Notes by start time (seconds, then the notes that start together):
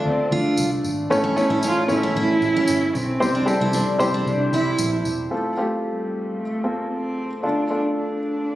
Already playing: D3 A3 D4 F4 A4 D5 E5
0.06 D2 C4
0.31 D2 D4 F4
0.57 C2, tambourine
0.84 G#1, tambourine
1.10 A1 A2 A3 C#4 E4 A4 C#5, tambourine
1.24 C#4
1.36 A3 C#4 E4 A4 C#5, tambourine
1.50 A1 E4
1.63 C#4 F4, tambourine
1.88 A1 A3 C#4 E4 A4 C#5, tambourine
1.93 E4
2.03 C#4
2.16 A1 E4
2.42 A1, tambourine
2.56 C#4
2.67 G1, tambourine
2.95 B1 C4, tambourine
3.20 C2 C3 G3 C4 E4 G4 C5, tambourine
3.35 D4
3.45 G3 C4 E4 G4 A4, tambourine
3.61 C2 E4
3.73 C4 D4, tambourine
3.99 C2 G3 C4 E4 G4 C5, tambourine
4.14 D4
4.26 C2 D4, tambourine
4.52 C2 E4, tambourine
4.78 A#1, tambourine
5.05 E1, tambourine
5.31 A3 C4 F4 A4
5.57 A3 C4 F4 G4
5.86 G3
6.39 A3
6.64 A3 A#3 C4 F4 A4
6.93 C4
7.43 D3 A3 D4 F4 A4
7.70 A3 D4 F4 A4
7.97 D4